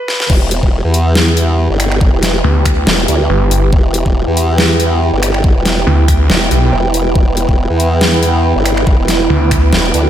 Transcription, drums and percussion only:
0.08 snare medium
0.20 snare medium
0.30 kick loud
0.30 crash loud
0.51 closed hi-hat medium
0.63 kick medium
0.94 closed hi-hat medium
1.15 snare loud
1.37 closed hi-hat medium
1.80 finger snap medium
1.80 closed hi-hat medium
1.92 finger snap medium
2.01 kick loud
2.23 snare medium
2.23 closed hi-hat medium
2.65 finger snap medium
2.65 kick medium
2.65 closed hi-hat medium
2.87 snare loud
3.08 closed hi-hat medium
3.51 closed hi-hat medium
3.73 kick loud
3.94 closed hi-hat medium
4.06 kick medium
4.37 closed hi-hat medium
4.58 snare loud
4.80 closed hi-hat medium
5.23 finger snap medium
5.23 closed hi-hat medium
5.34 finger snap medium
5.44 kick loud
5.65 snare medium
5.65 closed hi-hat medium
6.08 finger snap medium
6.08 kick medium
6.08 closed hi-hat medium
6.30 snare loud
6.51 closed hi-hat medium
6.94 closed hi-hat medium
7.16 kick loud
7.37 closed hi-hat medium
7.49 kick medium
7.80 closed hi-hat medium
8.01 snare loud
8.23 closed hi-hat medium
8.65 finger snap medium
8.65 closed hi-hat medium
8.77 finger snap medium
8.87 kick loud
9.08 snare medium
9.08 closed hi-hat medium
9.51 finger snap medium
9.51 kick medium
9.51 closed hi-hat medium
9.73 snare loud
9.94 closed hi-hat medium

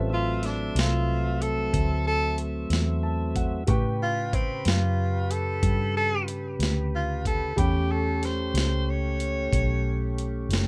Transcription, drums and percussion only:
0.43 snare soft
0.43 closed hi-hat medium
0.76 snare loud
0.76 closed hi-hat medium
1.42 closed hi-hat medium
1.74 kick medium
1.74 closed hi-hat medium
2.38 closed hi-hat medium
2.70 snare medium
2.70 closed hi-hat medium
3.36 kick medium
3.36 closed hi-hat medium
3.67 kick loud
3.67 closed hi-hat medium
4.33 kick medium
4.33 closed hi-hat medium
4.65 snare loud
4.65 closed hi-hat medium
5.31 closed hi-hat medium
5.63 kick medium
5.63 closed hi-hat medium
6.28 closed hi-hat medium
6.60 snare medium
6.60 closed hi-hat medium
7.25 kick medium
7.25 closed hi-hat medium
7.58 kick loud
7.58 closed hi-hat medium
8.23 snare soft
8.23 closed hi-hat medium
8.55 snare loud
8.55 closed hi-hat medium
9.20 closed hi-hat medium
9.53 kick medium
9.53 closed hi-hat medium
10.18 closed hi-hat medium
10.51 snare medium
10.51 closed hi-hat medium

